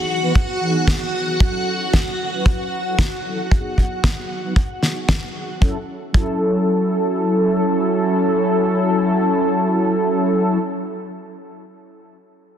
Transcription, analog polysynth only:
0.00 0.19 E3 medium
0.00 0.20 B3 medium
0.00 0.20 D#4 medium
0.00 0.20 G#4 medium
0.23 0.32 E3 medium
0.23 0.33 B3 medium
0.23 0.33 D#4 medium
0.23 0.33 B4 medium
0.60 1.37 E3 medium
0.60 1.37 B3 medium
0.60 1.38 D#4 medium
0.60 1.38 G#4 medium
2.33 2.82 F#3 medium
2.33 2.83 C#4 medium
2.33 2.83 E4 medium
2.33 2.83 B4 medium
2.86 2.95 F#3 medium
2.86 2.96 C#4 medium
2.86 2.96 E4 medium
2.86 2.96 A4 medium
3.24 3.48 F#3 medium
3.24 3.48 C#4 medium
3.24 3.48 E4 medium
3.24 3.48 A4 medium
3.52 4.41 G#4 medium
4.43 4.53 F#3 medium
4.43 4.53 B3 medium
4.43 4.54 D#4 medium
4.43 4.54 B4 medium
4.81 5.58 F#3 medium
4.81 5.58 B3 medium
4.81 5.59 D#4 medium
4.81 5.59 G#4 medium
5.60 5.76 F#3 medium
5.60 5.77 C#4 medium
5.60 5.77 E4 medium
5.60 5.78 A4 medium
6.12 10.58 F#3 medium
6.12 10.58 C#4 medium
6.12 10.59 E4 medium
6.12 10.59 A4 loud

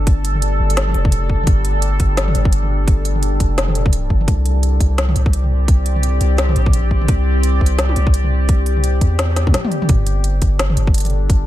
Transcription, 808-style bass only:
0.00 0.58 G1 loud
0.60 0.93 G1 medium
0.95 1.46 F1 loud
1.47 1.99 G1 loud
2.00 2.34 G1 loud
2.35 3.39 G1 loud
3.40 4.09 F1 medium
4.10 4.27 G1 loud
4.28 4.79 C2 loud
4.80 5.14 C2 loud
5.15 6.20 C2 loud
6.21 6.55 C2 loud
6.56 7.07 A#1 loud
7.09 7.60 C2 loud
7.61 7.95 C2 loud
7.96 9.01 C2 loud
9.01 9.54 E2 medium
9.89 10.41 G1 loud
10.42 10.76 G1 loud
10.77 11.47 G1 loud

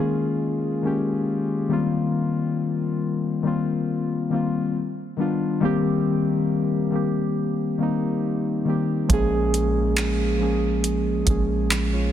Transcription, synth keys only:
0.00 0.82 D#3 loud
0.00 0.83 G#3 loud
0.00 0.84 A#3 medium
0.00 0.85 C#4 medium
0.00 1.72 F4 loud
0.00 0.73 G#4 medium
0.82 1.58 D#3 medium
0.82 1.58 G#3 medium
0.82 1.59 A#3 medium
0.82 1.59 C#4 medium
0.87 1.60 G4 medium
1.69 3.19 D#3 medium
1.69 3.20 G3 medium
1.69 3.20 A#3 medium
1.69 3.21 C4 medium
1.73 3.21 F4 medium
3.43 4.18 D#3 medium
3.43 4.19 G3 medium
3.43 4.19 A#3 medium
3.43 4.20 C4 medium
3.47 4.21 F4 medium
4.30 4.74 D#3 medium
4.30 4.75 G3 medium
4.30 4.75 A#3 medium
4.30 4.76 C4 medium
4.34 4.76 F4 medium
5.17 5.55 D#3 medium
5.17 5.55 G3 medium
5.17 5.56 B3 medium
5.17 5.56 D4 medium
5.21 5.57 F4 medium
5.60 6.73 D#3 loud
5.60 6.74 G3 loud
5.60 6.74 A#3 medium
5.60 6.75 C4 loud
5.65 6.75 G4 loud
6.91 7.66 D#3 medium
6.91 7.67 G3 medium
6.91 7.67 A#3 medium
6.91 7.68 C4 medium
6.95 7.69 G4 medium
7.78 8.53 D#3 medium
7.78 8.54 G3 medium
7.78 8.54 A#3 medium
7.78 8.55 C4 medium
7.82 8.55 D#4 medium
8.65 9.03 D#3 medium
8.65 9.03 G3 medium
8.65 9.04 A#3 medium
8.65 9.05 C4 medium
8.69 9.05 G4 medium
9.08 10.21 F3 loud
9.08 10.22 G#3 loud
9.08 10.22 A#3 medium
9.08 10.23 C#4 medium
9.13 10.23 G#4 loud
10.39 11.14 F3 medium
10.39 11.15 G#3 medium
10.39 11.15 A#3 medium
10.39 11.16 C#4 medium
10.43 11.16 G#4 medium
11.25 12.01 F3 medium
11.25 12.02 G#3 medium
11.25 12.02 A#3 medium
11.25 11.71 C#4 medium
11.30 11.72 G#4 medium
11.93 12.12 F4 medium
11.93 12.12 C#5 medium

